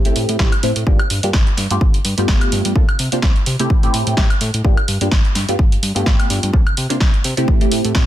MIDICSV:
0, 0, Header, 1, 4, 480
1, 0, Start_track
1, 0, Tempo, 472441
1, 880, Time_signature, 4, 2, 24, 8
1, 8190, End_track
2, 0, Start_track
2, 0, Title_t, "Analog polysynth"
2, 0, Program_c, 0, 90
2, 53, Note_on_c, 0, 57, 94
2, 55, Note_on_c, 0, 60, 86
2, 59, Note_on_c, 0, 64, 89
2, 60, Note_on_c, 0, 67, 104
2, 374, Note_off_c, 0, 57, 0
2, 375, Note_off_c, 0, 60, 0
2, 377, Note_off_c, 0, 64, 0
2, 378, Note_off_c, 0, 67, 0
2, 399, Note_on_c, 0, 57, 85
2, 403, Note_on_c, 0, 60, 79
2, 409, Note_on_c, 0, 67, 92
2, 524, Note_off_c, 0, 57, 0
2, 526, Note_off_c, 0, 60, 0
2, 528, Note_off_c, 0, 67, 0
2, 640, Note_on_c, 0, 57, 100
2, 643, Note_on_c, 0, 60, 89
2, 646, Note_on_c, 0, 64, 92
2, 648, Note_on_c, 0, 72, 116
2, 717, Note_off_c, 0, 57, 0
2, 719, Note_off_c, 0, 60, 0
2, 721, Note_off_c, 0, 64, 0
2, 721, Note_off_c, 0, 72, 0
2, 882, Note_on_c, 0, 58, 101
2, 882, Note_on_c, 0, 62, 91
2, 886, Note_on_c, 0, 65, 88
2, 890, Note_on_c, 0, 67, 108
2, 1005, Note_off_c, 0, 58, 0
2, 1005, Note_off_c, 0, 62, 0
2, 1007, Note_off_c, 0, 65, 0
2, 1009, Note_off_c, 0, 67, 0
2, 1253, Note_on_c, 0, 58, 88
2, 1254, Note_on_c, 0, 62, 76
2, 1259, Note_on_c, 0, 65, 79
2, 1261, Note_on_c, 0, 67, 97
2, 1316, Note_off_c, 0, 58, 0
2, 1316, Note_off_c, 0, 62, 0
2, 1319, Note_off_c, 0, 65, 0
2, 1320, Note_off_c, 0, 67, 0
2, 1734, Note_on_c, 0, 57, 85
2, 1736, Note_on_c, 0, 59, 80
2, 1739, Note_on_c, 0, 65, 82
2, 1741, Note_on_c, 0, 67, 99
2, 1796, Note_off_c, 0, 57, 0
2, 1797, Note_off_c, 0, 59, 0
2, 1799, Note_off_c, 0, 65, 0
2, 1800, Note_off_c, 0, 67, 0
2, 2208, Note_on_c, 0, 57, 86
2, 2214, Note_on_c, 0, 59, 82
2, 2219, Note_on_c, 0, 65, 84
2, 2225, Note_on_c, 0, 67, 100
2, 2772, Note_off_c, 0, 57, 0
2, 2775, Note_off_c, 0, 59, 0
2, 2777, Note_off_c, 0, 65, 0
2, 2780, Note_off_c, 0, 67, 0
2, 2799, Note_on_c, 0, 58, 88
2, 2802, Note_on_c, 0, 62, 80
2, 2805, Note_on_c, 0, 65, 79
2, 2808, Note_on_c, 0, 69, 95
2, 2877, Note_off_c, 0, 58, 0
2, 2878, Note_off_c, 0, 62, 0
2, 2880, Note_off_c, 0, 65, 0
2, 2881, Note_off_c, 0, 69, 0
2, 3171, Note_on_c, 0, 58, 83
2, 3174, Note_on_c, 0, 62, 75
2, 3178, Note_on_c, 0, 65, 75
2, 3180, Note_on_c, 0, 72, 89
2, 3235, Note_off_c, 0, 58, 0
2, 3237, Note_off_c, 0, 62, 0
2, 3238, Note_off_c, 0, 65, 0
2, 3239, Note_off_c, 0, 72, 0
2, 3652, Note_on_c, 0, 57, 96
2, 3653, Note_on_c, 0, 60, 87
2, 3656, Note_on_c, 0, 64, 87
2, 3658, Note_on_c, 0, 67, 105
2, 3860, Note_off_c, 0, 57, 0
2, 3861, Note_off_c, 0, 60, 0
2, 3863, Note_off_c, 0, 64, 0
2, 3864, Note_off_c, 0, 67, 0
2, 3891, Note_on_c, 0, 57, 97
2, 3893, Note_on_c, 0, 60, 90
2, 3895, Note_on_c, 0, 64, 85
2, 3900, Note_on_c, 0, 67, 110
2, 4214, Note_off_c, 0, 57, 0
2, 4215, Note_off_c, 0, 60, 0
2, 4216, Note_off_c, 0, 64, 0
2, 4218, Note_off_c, 0, 67, 0
2, 4238, Note_on_c, 0, 57, 89
2, 4241, Note_on_c, 0, 60, 83
2, 4243, Note_on_c, 0, 64, 82
2, 4247, Note_on_c, 0, 67, 99
2, 4317, Note_off_c, 0, 57, 0
2, 4318, Note_off_c, 0, 60, 0
2, 4319, Note_off_c, 0, 64, 0
2, 4321, Note_off_c, 0, 67, 0
2, 4719, Note_on_c, 0, 58, 97
2, 4722, Note_on_c, 0, 62, 87
2, 4725, Note_on_c, 0, 65, 89
2, 4728, Note_on_c, 0, 67, 106
2, 4844, Note_off_c, 0, 58, 0
2, 4845, Note_off_c, 0, 62, 0
2, 4846, Note_off_c, 0, 65, 0
2, 4848, Note_off_c, 0, 67, 0
2, 5090, Note_on_c, 0, 58, 87
2, 5094, Note_on_c, 0, 62, 82
2, 5097, Note_on_c, 0, 65, 79
2, 5099, Note_on_c, 0, 67, 94
2, 5155, Note_off_c, 0, 58, 0
2, 5157, Note_off_c, 0, 62, 0
2, 5158, Note_off_c, 0, 65, 0
2, 5159, Note_off_c, 0, 67, 0
2, 5573, Note_on_c, 0, 57, 87
2, 5575, Note_on_c, 0, 59, 81
2, 5578, Note_on_c, 0, 65, 81
2, 5580, Note_on_c, 0, 67, 96
2, 5636, Note_off_c, 0, 57, 0
2, 5637, Note_off_c, 0, 59, 0
2, 5638, Note_off_c, 0, 65, 0
2, 5639, Note_off_c, 0, 67, 0
2, 6043, Note_on_c, 0, 57, 90
2, 6046, Note_on_c, 0, 59, 82
2, 6053, Note_on_c, 0, 65, 81
2, 6059, Note_on_c, 0, 67, 98
2, 6609, Note_off_c, 0, 57, 0
2, 6611, Note_off_c, 0, 59, 0
2, 6615, Note_off_c, 0, 65, 0
2, 6617, Note_off_c, 0, 67, 0
2, 6633, Note_on_c, 0, 58, 90
2, 6636, Note_on_c, 0, 62, 82
2, 6640, Note_on_c, 0, 65, 82
2, 6642, Note_on_c, 0, 69, 99
2, 6714, Note_off_c, 0, 58, 0
2, 6716, Note_off_c, 0, 62, 0
2, 6717, Note_off_c, 0, 65, 0
2, 6718, Note_off_c, 0, 69, 0
2, 7005, Note_on_c, 0, 58, 83
2, 7008, Note_on_c, 0, 62, 78
2, 7011, Note_on_c, 0, 65, 73
2, 7013, Note_on_c, 0, 72, 92
2, 7072, Note_off_c, 0, 58, 0
2, 7073, Note_off_c, 0, 62, 0
2, 7075, Note_off_c, 0, 65, 0
2, 7076, Note_off_c, 0, 72, 0
2, 7488, Note_on_c, 0, 57, 98
2, 7491, Note_on_c, 0, 60, 85
2, 7493, Note_on_c, 0, 64, 86
2, 7496, Note_on_c, 0, 67, 103
2, 7698, Note_off_c, 0, 57, 0
2, 7700, Note_off_c, 0, 60, 0
2, 7701, Note_off_c, 0, 64, 0
2, 7702, Note_off_c, 0, 67, 0
2, 7729, Note_on_c, 0, 57, 101
2, 7731, Note_on_c, 0, 60, 87
2, 7734, Note_on_c, 0, 64, 89
2, 7737, Note_on_c, 0, 67, 108
2, 8053, Note_off_c, 0, 57, 0
2, 8054, Note_off_c, 0, 60, 0
2, 8055, Note_off_c, 0, 64, 0
2, 8056, Note_off_c, 0, 67, 0
2, 8076, Note_on_c, 0, 57, 90
2, 8079, Note_on_c, 0, 60, 82
2, 8081, Note_on_c, 0, 64, 82
2, 8083, Note_on_c, 0, 67, 94
2, 8156, Note_off_c, 0, 57, 0
2, 8157, Note_off_c, 0, 60, 0
2, 8158, Note_off_c, 0, 64, 0
2, 8159, Note_off_c, 0, 67, 0
2, 8190, End_track
3, 0, Start_track
3, 0, Title_t, "Analog synth bass"
3, 0, Program_c, 1, 38
3, 0, Note_on_c, 1, 33, 86
3, 105, Note_off_c, 1, 33, 0
3, 164, Note_on_c, 1, 45, 84
3, 260, Note_off_c, 1, 45, 0
3, 295, Note_on_c, 1, 45, 104
3, 374, Note_off_c, 1, 45, 0
3, 401, Note_on_c, 1, 33, 100
3, 499, Note_off_c, 1, 33, 0
3, 642, Note_on_c, 1, 45, 90
3, 739, Note_off_c, 1, 45, 0
3, 775, Note_on_c, 1, 45, 88
3, 854, Note_off_c, 1, 45, 0
3, 881, Note_on_c, 1, 31, 99
3, 979, Note_off_c, 1, 31, 0
3, 1123, Note_on_c, 1, 43, 83
3, 1220, Note_off_c, 1, 43, 0
3, 1255, Note_on_c, 1, 43, 89
3, 1334, Note_off_c, 1, 43, 0
3, 1361, Note_on_c, 1, 31, 95
3, 1458, Note_off_c, 1, 31, 0
3, 1603, Note_on_c, 1, 43, 84
3, 1700, Note_off_c, 1, 43, 0
3, 1734, Note_on_c, 1, 43, 79
3, 1813, Note_off_c, 1, 43, 0
3, 1840, Note_on_c, 1, 31, 87
3, 2025, Note_off_c, 1, 31, 0
3, 2082, Note_on_c, 1, 43, 81
3, 2179, Note_off_c, 1, 43, 0
3, 2215, Note_on_c, 1, 43, 106
3, 2294, Note_off_c, 1, 43, 0
3, 2321, Note_on_c, 1, 31, 98
3, 2419, Note_off_c, 1, 31, 0
3, 2564, Note_on_c, 1, 43, 109
3, 2660, Note_off_c, 1, 43, 0
3, 2696, Note_on_c, 1, 43, 88
3, 2774, Note_off_c, 1, 43, 0
3, 2800, Note_on_c, 1, 36, 97
3, 2898, Note_off_c, 1, 36, 0
3, 2936, Note_on_c, 1, 48, 44
3, 3020, Note_off_c, 1, 48, 0
3, 3042, Note_on_c, 1, 48, 84
3, 3139, Note_off_c, 1, 48, 0
3, 3176, Note_on_c, 1, 48, 91
3, 3254, Note_off_c, 1, 48, 0
3, 3280, Note_on_c, 1, 36, 95
3, 3378, Note_off_c, 1, 36, 0
3, 3523, Note_on_c, 1, 48, 90
3, 3620, Note_off_c, 1, 48, 0
3, 3654, Note_on_c, 1, 48, 80
3, 3733, Note_off_c, 1, 48, 0
3, 3760, Note_on_c, 1, 33, 85
3, 3945, Note_off_c, 1, 33, 0
3, 4004, Note_on_c, 1, 45, 80
3, 4100, Note_off_c, 1, 45, 0
3, 4135, Note_on_c, 1, 45, 106
3, 4213, Note_off_c, 1, 45, 0
3, 4241, Note_on_c, 1, 33, 95
3, 4339, Note_off_c, 1, 33, 0
3, 4481, Note_on_c, 1, 45, 107
3, 4579, Note_off_c, 1, 45, 0
3, 4613, Note_on_c, 1, 45, 87
3, 4693, Note_off_c, 1, 45, 0
3, 4720, Note_on_c, 1, 31, 95
3, 4818, Note_off_c, 1, 31, 0
3, 4959, Note_on_c, 1, 43, 81
3, 5058, Note_off_c, 1, 43, 0
3, 5091, Note_on_c, 1, 43, 90
3, 5172, Note_off_c, 1, 43, 0
3, 5201, Note_on_c, 1, 31, 100
3, 5299, Note_off_c, 1, 31, 0
3, 5440, Note_on_c, 1, 43, 89
3, 5538, Note_off_c, 1, 43, 0
3, 5573, Note_on_c, 1, 43, 82
3, 5653, Note_off_c, 1, 43, 0
3, 5680, Note_on_c, 1, 31, 86
3, 5865, Note_off_c, 1, 31, 0
3, 5919, Note_on_c, 1, 43, 83
3, 6018, Note_off_c, 1, 43, 0
3, 6053, Note_on_c, 1, 43, 105
3, 6133, Note_off_c, 1, 43, 0
3, 6161, Note_on_c, 1, 31, 94
3, 6258, Note_off_c, 1, 31, 0
3, 6402, Note_on_c, 1, 43, 107
3, 6499, Note_off_c, 1, 43, 0
3, 6535, Note_on_c, 1, 43, 86
3, 6613, Note_off_c, 1, 43, 0
3, 6640, Note_on_c, 1, 36, 102
3, 6738, Note_off_c, 1, 36, 0
3, 6775, Note_on_c, 1, 48, 45
3, 6860, Note_off_c, 1, 48, 0
3, 6884, Note_on_c, 1, 48, 85
3, 6980, Note_off_c, 1, 48, 0
3, 7014, Note_on_c, 1, 48, 90
3, 7093, Note_off_c, 1, 48, 0
3, 7119, Note_on_c, 1, 36, 95
3, 7218, Note_off_c, 1, 36, 0
3, 7363, Note_on_c, 1, 48, 87
3, 7459, Note_off_c, 1, 48, 0
3, 7494, Note_on_c, 1, 48, 81
3, 7573, Note_off_c, 1, 48, 0
3, 7599, Note_on_c, 1, 33, 89
3, 7784, Note_off_c, 1, 33, 0
3, 7842, Note_on_c, 1, 45, 80
3, 7939, Note_off_c, 1, 45, 0
3, 7974, Note_on_c, 1, 45, 104
3, 8053, Note_off_c, 1, 45, 0
3, 8080, Note_on_c, 1, 33, 97
3, 8178, Note_off_c, 1, 33, 0
3, 8190, End_track
4, 0, Start_track
4, 0, Title_t, "Drums"
4, 52, Note_on_c, 9, 42, 56
4, 153, Note_off_c, 9, 42, 0
4, 160, Note_on_c, 9, 46, 101
4, 261, Note_off_c, 9, 46, 0
4, 293, Note_on_c, 9, 42, 67
4, 394, Note_off_c, 9, 42, 0
4, 398, Note_on_c, 9, 38, 124
4, 399, Note_on_c, 9, 36, 112
4, 499, Note_off_c, 9, 38, 0
4, 501, Note_off_c, 9, 36, 0
4, 532, Note_on_c, 9, 42, 54
4, 532, Note_on_c, 9, 76, 64
4, 634, Note_off_c, 9, 42, 0
4, 634, Note_off_c, 9, 76, 0
4, 640, Note_on_c, 9, 46, 86
4, 742, Note_off_c, 9, 46, 0
4, 771, Note_on_c, 9, 42, 71
4, 873, Note_off_c, 9, 42, 0
4, 880, Note_on_c, 9, 36, 121
4, 982, Note_off_c, 9, 36, 0
4, 1011, Note_on_c, 9, 42, 37
4, 1011, Note_on_c, 9, 76, 79
4, 1112, Note_off_c, 9, 42, 0
4, 1112, Note_off_c, 9, 76, 0
4, 1119, Note_on_c, 9, 46, 104
4, 1221, Note_off_c, 9, 46, 0
4, 1251, Note_on_c, 9, 42, 69
4, 1353, Note_off_c, 9, 42, 0
4, 1355, Note_on_c, 9, 38, 117
4, 1360, Note_on_c, 9, 36, 120
4, 1457, Note_off_c, 9, 38, 0
4, 1462, Note_off_c, 9, 36, 0
4, 1493, Note_on_c, 9, 42, 37
4, 1594, Note_off_c, 9, 42, 0
4, 1599, Note_on_c, 9, 38, 38
4, 1602, Note_on_c, 9, 46, 90
4, 1700, Note_off_c, 9, 38, 0
4, 1703, Note_off_c, 9, 46, 0
4, 1733, Note_on_c, 9, 42, 67
4, 1834, Note_off_c, 9, 42, 0
4, 1840, Note_on_c, 9, 36, 120
4, 1942, Note_off_c, 9, 36, 0
4, 1972, Note_on_c, 9, 42, 57
4, 2073, Note_off_c, 9, 42, 0
4, 2079, Note_on_c, 9, 46, 106
4, 2181, Note_off_c, 9, 46, 0
4, 2212, Note_on_c, 9, 42, 70
4, 2313, Note_off_c, 9, 42, 0
4, 2317, Note_on_c, 9, 38, 124
4, 2320, Note_on_c, 9, 36, 119
4, 2419, Note_off_c, 9, 38, 0
4, 2422, Note_off_c, 9, 36, 0
4, 2452, Note_on_c, 9, 42, 57
4, 2452, Note_on_c, 9, 76, 65
4, 2554, Note_off_c, 9, 42, 0
4, 2554, Note_off_c, 9, 76, 0
4, 2561, Note_on_c, 9, 46, 94
4, 2663, Note_off_c, 9, 46, 0
4, 2692, Note_on_c, 9, 42, 70
4, 2794, Note_off_c, 9, 42, 0
4, 2800, Note_on_c, 9, 36, 121
4, 2901, Note_off_c, 9, 36, 0
4, 2933, Note_on_c, 9, 42, 37
4, 2933, Note_on_c, 9, 76, 79
4, 3034, Note_off_c, 9, 42, 0
4, 3034, Note_off_c, 9, 76, 0
4, 3038, Note_on_c, 9, 46, 111
4, 3140, Note_off_c, 9, 46, 0
4, 3171, Note_on_c, 9, 42, 67
4, 3272, Note_off_c, 9, 42, 0
4, 3275, Note_on_c, 9, 38, 122
4, 3280, Note_on_c, 9, 36, 117
4, 3377, Note_off_c, 9, 38, 0
4, 3382, Note_off_c, 9, 36, 0
4, 3412, Note_on_c, 9, 42, 38
4, 3514, Note_off_c, 9, 42, 0
4, 3519, Note_on_c, 9, 46, 94
4, 3621, Note_off_c, 9, 46, 0
4, 3653, Note_on_c, 9, 42, 63
4, 3754, Note_off_c, 9, 42, 0
4, 3760, Note_on_c, 9, 36, 126
4, 3862, Note_off_c, 9, 36, 0
4, 3894, Note_on_c, 9, 42, 54
4, 3995, Note_off_c, 9, 42, 0
4, 4001, Note_on_c, 9, 46, 113
4, 4103, Note_off_c, 9, 46, 0
4, 4134, Note_on_c, 9, 42, 68
4, 4235, Note_off_c, 9, 42, 0
4, 4237, Note_on_c, 9, 38, 127
4, 4240, Note_on_c, 9, 36, 121
4, 4339, Note_off_c, 9, 38, 0
4, 4342, Note_off_c, 9, 36, 0
4, 4373, Note_on_c, 9, 42, 52
4, 4373, Note_on_c, 9, 76, 63
4, 4474, Note_off_c, 9, 42, 0
4, 4474, Note_off_c, 9, 76, 0
4, 4479, Note_on_c, 9, 46, 97
4, 4581, Note_off_c, 9, 46, 0
4, 4612, Note_on_c, 9, 42, 71
4, 4714, Note_off_c, 9, 42, 0
4, 4720, Note_on_c, 9, 36, 123
4, 4821, Note_off_c, 9, 36, 0
4, 4851, Note_on_c, 9, 42, 36
4, 4851, Note_on_c, 9, 76, 80
4, 4952, Note_off_c, 9, 42, 0
4, 4952, Note_off_c, 9, 76, 0
4, 4959, Note_on_c, 9, 46, 111
4, 5061, Note_off_c, 9, 46, 0
4, 5091, Note_on_c, 9, 42, 64
4, 5193, Note_off_c, 9, 42, 0
4, 5197, Note_on_c, 9, 38, 116
4, 5200, Note_on_c, 9, 36, 126
4, 5298, Note_off_c, 9, 38, 0
4, 5302, Note_off_c, 9, 36, 0
4, 5333, Note_on_c, 9, 42, 35
4, 5434, Note_off_c, 9, 42, 0
4, 5437, Note_on_c, 9, 38, 37
4, 5440, Note_on_c, 9, 46, 97
4, 5539, Note_off_c, 9, 38, 0
4, 5542, Note_off_c, 9, 46, 0
4, 5574, Note_on_c, 9, 42, 59
4, 5675, Note_off_c, 9, 42, 0
4, 5679, Note_on_c, 9, 36, 123
4, 5781, Note_off_c, 9, 36, 0
4, 5814, Note_on_c, 9, 42, 52
4, 5916, Note_off_c, 9, 42, 0
4, 5922, Note_on_c, 9, 46, 112
4, 6023, Note_off_c, 9, 46, 0
4, 6055, Note_on_c, 9, 42, 64
4, 6156, Note_off_c, 9, 42, 0
4, 6159, Note_on_c, 9, 36, 125
4, 6160, Note_on_c, 9, 38, 124
4, 6261, Note_off_c, 9, 36, 0
4, 6262, Note_off_c, 9, 38, 0
4, 6295, Note_on_c, 9, 42, 50
4, 6295, Note_on_c, 9, 76, 62
4, 6396, Note_off_c, 9, 42, 0
4, 6396, Note_off_c, 9, 76, 0
4, 6402, Note_on_c, 9, 46, 97
4, 6504, Note_off_c, 9, 46, 0
4, 6534, Note_on_c, 9, 42, 67
4, 6635, Note_off_c, 9, 42, 0
4, 6640, Note_on_c, 9, 36, 121
4, 6741, Note_off_c, 9, 36, 0
4, 6773, Note_on_c, 9, 42, 34
4, 6773, Note_on_c, 9, 76, 79
4, 6874, Note_off_c, 9, 42, 0
4, 6874, Note_off_c, 9, 76, 0
4, 6880, Note_on_c, 9, 46, 106
4, 6982, Note_off_c, 9, 46, 0
4, 7013, Note_on_c, 9, 42, 65
4, 7115, Note_off_c, 9, 42, 0
4, 7117, Note_on_c, 9, 38, 116
4, 7119, Note_on_c, 9, 36, 122
4, 7218, Note_off_c, 9, 38, 0
4, 7221, Note_off_c, 9, 36, 0
4, 7253, Note_on_c, 9, 42, 33
4, 7354, Note_off_c, 9, 42, 0
4, 7360, Note_on_c, 9, 46, 96
4, 7461, Note_off_c, 9, 46, 0
4, 7492, Note_on_c, 9, 42, 59
4, 7593, Note_off_c, 9, 42, 0
4, 7599, Note_on_c, 9, 36, 119
4, 7701, Note_off_c, 9, 36, 0
4, 7733, Note_on_c, 9, 42, 51
4, 7834, Note_off_c, 9, 42, 0
4, 7839, Note_on_c, 9, 46, 108
4, 7940, Note_off_c, 9, 46, 0
4, 7971, Note_on_c, 9, 42, 64
4, 8072, Note_off_c, 9, 42, 0
4, 8074, Note_on_c, 9, 38, 117
4, 8079, Note_on_c, 9, 36, 127
4, 8175, Note_off_c, 9, 38, 0
4, 8180, Note_off_c, 9, 36, 0
4, 8190, End_track
0, 0, End_of_file